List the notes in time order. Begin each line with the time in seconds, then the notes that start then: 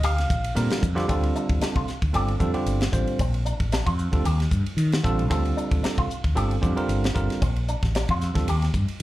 Already playing: D2
0.03 G4 F5, hi-hat pedal, ride
0.18 snare, ride
0.30 A#1, kick, hi-hat pedal
0.44 ride
0.55 A#2 D3 G3 C4 F4 A#4, hi-hat pedal, ride
0.70 snare, ride
0.83 F2, kick, hi-hat pedal
0.95 D3 G3 C4 F4 G4, snare, ride
1.08 D2 D3 G3 C4 F4 A4, kick, hi-hat pedal, ride
1.23 ride
1.35 D4, hi-hat pedal
1.49 D2, kick, ride
1.61 D4, muted fretless electric bass stroke, snare, hi-hat pedal, ride
1.75 C2 F4, kick, ride
1.88 snare, hi-hat pedal
2.02 D2, kick, ride
2.13 G1 D3 G3 C4 F4 G4 A4, hi-hat pedal, ride
2.28 ride
2.39 F2 D3 G3 C4 F4 A4, kick, hi-hat pedal
2.53 D3 G3 C4 F4 G4, ride
2.66 G1, hi-hat pedal, ride
2.81 snare, ride
2.92 A1 D3 G3 C4 F4 C5, kick, hi-hat pedal
3.07 ride
3.19 A#1 C4, kick, hi-hat pedal, ride
3.34 ride
3.45 D4, hi-hat pedal
3.60 A1, kick, ride
3.72 D4, snare, hi-hat pedal, ride
3.86 F2 F4, kick, ride
3.99 hi-hat pedal
4.12 D2 D3 G3 C4 F4 A4, kick, ride
4.24 D#2 G4, hi-hat pedal, ride
4.40 snare, ride
4.51 G2, kick, hi-hat pedal
4.66 ride
4.77 D#3, hi-hat pedal, ride
4.92 snare, ride
5.04 A1 D3 G3 C4 F4 A4, kick, hi-hat pedal
5.19 ride
5.30 D2 D3 G3 C4 F4 A4, kick, hi-hat pedal, ride
5.45 ride
5.57 D4, hi-hat pedal
5.71 D2, kick, ride
5.83 D4, muted fretless electric bass stroke, snare, hi-hat pedal, ride
5.98 C2 F4, kick, ride
6.10 hi-hat pedal
6.24 D2, kick, ride
6.35 G1 D3 G3 C4 F4 G4 A4, hi-hat pedal, ride
6.51 ride
6.62 F2 D3 G3 C4 F4 G4, kick, hi-hat pedal
6.76 D3 G3 C4 F4 A#4, ride
6.88 G1, hi-hat pedal, ride
7.04 snare, ride
7.14 G1 D3 G3 C4 F4 A#4, kick, hi-hat pedal
7.30 snare, ride
7.41 A#1 C4, kick, hi-hat pedal, ride
7.56 ride
7.68 D4, hi-hat pedal
7.83 A1, kick, snare, ride
7.95 D4, snare, hi-hat pedal, ride
8.09 F2 F4, kick, ride
8.21 snare, hi-hat pedal
8.34 D2 D3 G3 C4 F4 A4, kick, snare, ride
8.47 D#2 G4, hi-hat pedal, ride
8.62 snare, ride
8.74 G2, kick, hi-hat pedal
8.88 ride